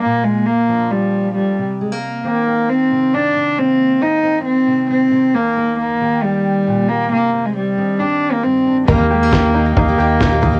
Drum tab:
SD |--------|--------|--------|--------|
FT |--------|--------|--------|--------|
BD |--------|--------|--------|--------|

SD |--------|--o---o-|
FT |--------|o---o--o|
BD |--------|o-o-o-o-|